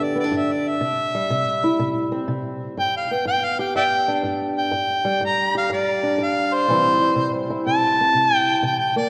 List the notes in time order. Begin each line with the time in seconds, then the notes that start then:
Already playing: G2 D3 B3 D4 G4
0.04 D5
0.15 B3
0.20 D5
0.24 D4
0.32 G2
0.37 E5
0.52 D5
0.68 E5
0.81 C3
1.15 G3
1.30 C3
1.64 E4
1.79 C3
2.12 C4
2.28 C3
2.77 G2 G5
2.96 F5
3.11 B3 G5
3.25 G2 G5
3.44 F5
3.59 G4 G5
3.76 G2 D5 E5 G5
4.08 D4
4.23 G2
4.58 G5
4.71 G2
5.05 G3
5.21 G2
5.25 A#5
5.55 G4 F5
5.70 G2 D5
6.03 D4
6.18 G2
6.23 F5
6.54 C5
6.68 C3 E3 G3 C4 E4
7.02 G3
7.16 C3
7.50 E4
7.66 C3 A5
8.01 C4
8.14 C3
8.36 G5
8.63 C3 G5
8.79 G5
8.96 A#3 D5